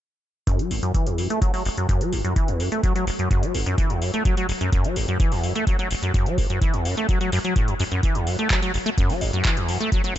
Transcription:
0.47 0.61 F#2 medium
0.47 kick loud
0.47 closed hi-hat medium
0.59 0.72 F#3 medium
0.59 closed hi-hat soft
0.71 0.81 F#1 loud
0.71 open hi-hat medium
0.83 0.93 F#2 medium
0.83 closed hi-hat soft
0.94 1.08 E3 medium
0.94 kick loud
0.94 closed hi-hat medium
1.07 1.20 E2 medium
1.07 closed hi-hat soft
1.18 1.28 F#2 loud
1.18 open hi-hat medium
1.30 1.40 A3 medium
1.30 closed hi-hat soft
1.42 1.52 F#3 medium
1.42 kick loud
1.42 closed hi-hat medium
1.54 1.63 F#3 medium
1.54 open hi-hat medium
1.65 1.69 F#1 medium
1.65 open hi-hat medium
1.77 1.87 F#2 medium
1.77 closed hi-hat soft
1.89 2.02 F#2 loud
1.89 kick loud
1.89 closed hi-hat medium
2.01 2.14 F#3 medium
2.01 closed hi-hat soft
2.13 2.23 F#1 loud
2.13 open hi-hat loud
2.25 2.34 F#2 medium
2.25 closed hi-hat soft
2.36 2.50 E3 medium
2.36 kick loud
2.36 closed hi-hat medium
2.48 2.61 E2 medium
2.48 closed hi-hat soft
2.60 2.70 F#2 loud
2.60 open hi-hat medium
2.72 2.81 A3 medium
2.72 closed hi-hat soft
2.83 2.93 F#3 medium
2.83 kick loud
2.83 closed hi-hat medium
2.95 3.05 F#3 medium
2.95 closed hi-hat soft
3.07 3.11 F#1 medium
3.07 open hi-hat loud
3.19 3.29 F#2 medium
3.19 closed hi-hat soft
3.31 3.44 F#2 medium
3.31 kick loud
3.31 closed hi-hat medium
3.43 3.56 F#3 medium
3.43 closed hi-hat soft
3.54 3.64 F#1 loud
3.54 open hi-hat loud
3.66 3.76 F#2 medium
3.66 closed hi-hat soft
3.78 3.92 E3 medium
3.78 kick loud
3.78 closed hi-hat medium
3.90 4.03 E2 medium
3.90 closed hi-hat soft
4.02 4.12 F#2 loud
4.02 open hi-hat loud
4.14 4.23 A3 medium
4.14 closed hi-hat soft
4.25 4.35 F#3 medium
4.25 kick loud
4.25 closed hi-hat medium
4.37 4.47 F#3 medium
4.37 closed hi-hat soft
4.49 4.53 F#1 medium
4.49 open hi-hat loud
4.61 4.71 F#2 medium
4.61 closed hi-hat soft
4.72 4.86 F#2 loud
4.72 kick loud
4.72 closed hi-hat medium
4.84 4.98 F#3 medium
4.84 closed hi-hat soft
4.96 5.06 F#1 medium
4.96 open hi-hat loud
5.08 5.18 F#2 medium
5.08 closed hi-hat soft
5.20 5.33 E3 medium
5.20 kick loud
5.20 closed hi-hat medium
5.32 5.45 E2 medium
5.32 open hi-hat medium
5.43 5.53 F#2 loud
5.43 open hi-hat loud
5.55 5.65 A3 medium
5.55 closed hi-hat soft
5.67 5.77 F#3 medium
5.67 kick loud
5.67 closed hi-hat medium
5.79 5.89 F#3 medium
5.79 closed hi-hat soft
5.91 5.95 F#1 medium
5.91 open hi-hat loud
6.03 6.12 F#2 medium
6.03 closed hi-hat soft
6.14 6.28 F#2 medium
6.14 kick loud
6.14 closed hi-hat medium
6.26 6.39 F#3 medium
6.26 closed hi-hat soft
6.38 6.48 F#1 loud
6.38 kick medium
6.38 open hi-hat loud
6.50 6.60 F#2 medium
6.50 closed hi-hat soft
6.62 6.75 E3 medium
6.62 kick loud
6.62 closed hi-hat medium
6.74 6.87 E2 medium
6.74 closed hi-hat soft
6.85 6.95 F#2 medium
6.85 open hi-hat loud
6.97 7.07 A3 medium
6.97 closed hi-hat soft
7.09 7.19 F#3 medium
7.09 kick loud
7.09 closed hi-hat medium
7.21 7.30 F#3 medium
7.21 closed hi-hat soft
7.32 7.39 F#2 loud
7.32 open hi-hat loud
7.44 7.54 F#3 medium
7.44 closed hi-hat soft
7.56 7.70 A2 medium
7.56 kick loud
7.56 closed hi-hat medium
7.68 7.74 F#2 medium
7.68 closed hi-hat soft
7.80 7.84 F#2 loud
7.80 open hi-hat loud
7.92 8.01 F#2 medium
7.92 closed hi-hat soft
8.03 8.17 E3 medium
8.03 kick loud
8.03 closed hi-hat medium
8.15 8.28 E2 medium
8.15 closed hi-hat soft
8.27 8.37 F#2 loud
8.27 open hi-hat medium
8.39 8.48 A3 medium
8.39 closed hi-hat soft
8.50 8.60 F#3 medium
8.50 kick loud
8.50 clap loud
8.50 closed hi-hat medium
8.62 8.72 F#3 medium
8.62 closed hi-hat soft
8.74 8.78 F#1 medium
8.74 open hi-hat loud
8.86 8.90 A3 loud
8.86 closed hi-hat soft
8.98 9.11 F#2 medium
8.98 kick loud
8.98 closed hi-hat medium
9.10 9.23 F#3 medium
9.10 open hi-hat medium
9.21 9.31 F#1 loud
9.21 open hi-hat loud
9.33 9.43 F#2 medium
9.33 closed hi-hat soft
9.45 9.58 E3 medium
9.45 kick loud
9.45 clap loud
9.45 closed hi-hat medium
9.57 9.70 E2 medium
9.57 closed hi-hat soft
9.68 9.78 F#2 loud
9.68 open hi-hat loud
9.80 9.90 A3 medium
9.80 closed hi-hat soft
9.92 10.02 F#3 medium
9.92 kick loud
9.92 closed hi-hat medium
10.04 10.14 F#3 medium
10.04 closed hi-hat soft

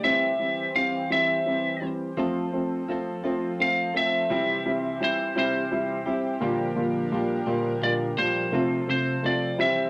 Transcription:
0.00 2.15 E3 medium
0.00 0.30 E3 medium
0.00 0.30 G3 medium
0.00 2.15 C4 medium
0.00 2.15 G4 medium
0.00 2.15 C5 medium
0.00 0.71 E5 medium
0.04 0.30 C4 medium
0.39 0.65 E3 medium
0.39 0.66 G3 medium
0.39 0.66 C4 medium
0.75 1.01 E3 medium
0.75 1.01 G3 soft
0.75 1.01 C4 medium
0.75 1.12 F5 medium
1.10 1.37 E3 medium
1.10 1.37 G3 medium
1.10 1.37 C4 medium
1.10 1.88 E5 medium
1.46 1.72 E3 medium
1.46 1.73 G3 medium
1.46 1.73 C4 medium
1.81 2.08 E3 medium
1.81 2.08 G3 medium
1.81 2.08 C4 medium
2.17 2.44 F3 medium
2.17 2.87 F3 medium
2.17 4.28 F3 medium
2.17 2.44 A3 medium
2.17 6.37 C4 medium
2.17 2.44 C4 medium
2.17 2.89 C4 medium
2.17 2.89 F4 medium
2.17 4.28 A4 medium
2.17 2.90 A4 medium
2.17 6.38 C5 medium
2.52 2.79 F3 medium
2.52 2.79 A3 medium
2.52 2.79 C4 medium
2.88 3.24 F3 medium
2.88 3.15 F3 medium
2.88 3.15 A3 medium
2.88 3.15 C4 medium
2.88 3.24 C4 medium
2.88 3.23 F4 medium
2.88 3.23 A4 medium
3.24 3.50 F3 medium
3.24 3.96 F3 medium
3.24 3.50 A3 medium
3.24 3.50 C4 medium
3.24 3.97 C4 medium
3.24 3.94 F4 medium
3.24 3.93 A4 medium
3.59 3.85 F3 medium
3.59 3.85 A3 medium
3.59 3.85 C4 medium
3.59 3.94 F5 medium
3.94 4.20 F3 medium
3.94 4.21 A3 medium
3.94 4.21 C4 medium
3.94 4.30 C4 soft
3.94 4.31 F4 soft
3.94 4.30 A4 soft
3.94 4.98 E5 medium
4.30 5.01 C3 medium
4.30 6.40 E3 medium
4.30 4.56 G3 medium
4.30 4.99 G3 medium
4.30 4.56 C4 medium
4.30 5.00 C4 medium
4.30 4.56 E4 medium
4.30 5.01 E4 medium
4.30 8.49 G4 medium
4.30 5.03 G4 medium
4.65 4.91 G3 medium
4.65 4.92 C4 medium
4.65 4.92 E4 medium
5.00 5.36 G3 medium
5.00 5.26 G3 medium
5.00 5.27 C4 medium
5.00 5.35 C4 medium
5.00 5.27 E4 medium
5.00 5.35 E4 medium
5.00 5.34 G4 medium
5.04 5.37 C5 medium
5.35 6.07 C3 medium
5.35 5.62 G3 medium
5.35 6.42 G3 medium
5.35 5.62 C4 medium
5.35 6.07 C4 medium
5.35 6.06 E4 medium
5.35 5.62 E4 medium
5.35 6.05 G4 medium
5.35 6.12 C5 medium
5.71 5.97 G3 medium
5.71 5.97 C4 medium
5.71 5.97 E4 medium
6.06 6.32 G3 medium
6.06 6.32 C4 medium
6.06 6.42 C4 soft
6.06 6.32 E4 medium
6.06 6.42 E4 soft
6.06 6.41 G4 medium
6.41 6.67 A#2 medium
6.41 7.12 A#2 medium
6.41 8.51 A#2 medium
6.41 7.12 D3 medium
6.41 7.10 F3 loud
6.41 9.57 F3 medium
6.41 6.67 G3 medium
6.41 6.67 A#3 medium
6.41 7.11 A#3 loud
6.41 8.51 D4 medium
6.41 7.12 D4 medium
6.41 6.67 F4 medium
6.41 7.13 G4 medium
6.41 8.51 A#4 medium
6.76 7.02 A#2 medium
6.76 7.02 G3 medium
6.76 7.02 A#3 medium
6.76 7.02 F4 medium
7.11 7.37 A#2 medium
7.11 7.46 F3 medium
7.11 7.38 G3 medium
7.11 7.38 A#3 medium
7.11 7.46 A#3 medium
7.11 7.46 D4 medium
7.11 7.38 F4 medium
7.11 7.45 G4 medium
7.46 7.73 A#2 medium
7.46 8.18 A#2 medium
7.46 8.18 D3 medium
7.46 8.18 F3 medium
7.46 7.73 G3 medium
7.46 7.73 A#3 medium
7.46 8.18 A#3 medium
7.46 8.17 D4 medium
7.46 7.73 F4 medium
7.46 8.16 G4 medium
7.82 8.08 A#2 medium
7.82 8.08 G3 medium
7.82 8.08 A#3 medium
7.82 8.08 F4 medium
7.82 7.93 D5 medium
8.17 8.43 A#2 medium
8.17 8.52 F3 soft
8.17 8.43 G3 medium
8.17 8.44 A#3 medium
8.17 8.53 A#3 soft
8.17 8.53 D4 soft
8.17 8.44 F4 medium
8.17 8.53 G4 medium
8.17 8.89 C5 medium
8.52 8.79 C3 medium
8.52 9.24 C3 medium
8.52 9.59 C3 medium
8.52 9.23 F3 medium
8.52 8.79 A3 medium
8.52 9.90 C4 medium
8.52 8.79 C4 medium
8.52 9.25 C4 medium
8.52 8.79 F4 loud
8.52 9.25 F4 medium
8.52 9.59 A4 medium
8.52 9.25 A4 medium
8.52 9.90 C5 medium
8.87 9.14 C3 medium
8.87 9.14 A3 medium
8.87 9.14 C4 medium
8.87 9.14 F4 medium
8.87 9.26 C5 medium
9.23 9.49 C3 medium
9.23 9.60 F3 medium
9.23 9.49 A3 medium
9.23 9.50 C4 medium
9.23 9.59 C4 medium
9.23 9.50 F4 medium
9.23 9.60 F4 medium
9.23 9.60 D5 medium
9.27 9.59 A4 medium
9.58 9.90 C3 soft
9.58 9.90 E3 medium
9.58 9.85 G3 medium
9.58 9.90 G3 medium
9.58 9.85 C4 medium
9.58 9.90 C4 medium
9.58 9.85 E4 medium
9.58 9.90 E4 medium
9.58 9.90 G4 medium
9.58 9.90 E5 medium

